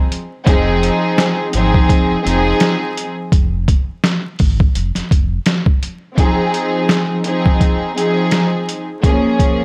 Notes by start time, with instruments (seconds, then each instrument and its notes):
0.12 closed hi-hat
0.45 sub bass F1, string section F3 C4 D#4 G#4, kick, closed hi-hat
0.83 closed hi-hat
1.18 snare, closed hi-hat
1.53 sub bass G#1, string section F3 C4 D#4 G#4, closed hi-hat
1.74 kick
1.89 kick, closed hi-hat
2.10 sub bass F1
2.24 sub bass F1, string section F3 C4 D#4 G#4, closed hi-hat
2.60 snare, closed hi-hat
2.97 closed hi-hat
3.32 sub bass F1, kick, closed hi-hat
3.68 kick, closed hi-hat
4.04 snare, closed hi-hat
4.39 sub bass G#1, kick, open hi-hat
4.60 kick
4.75 sub bass F1, closed hi-hat
4.95 sub bass F1, snare, closed hi-hat
5.11 sub bass F1, kick, closed hi-hat
5.46 snare, closed hi-hat
5.66 kick
5.83 closed hi-hat
6.16 string section F3 C4 D#4 G#4, kick, closed hi-hat
6.54 closed hi-hat
6.89 snare, closed hi-hat
7.24 string section F3 C4 D#4 G#4, closed hi-hat
7.46 kick
7.61 kick, closed hi-hat
7.95 string section F3 C4 D#4 G#4, closed hi-hat
8.31 snare, closed hi-hat
8.69 closed hi-hat
9.03 string section F3 A#3 C#4 G#4, kick, closed hi-hat
9.39 kick, closed hi-hat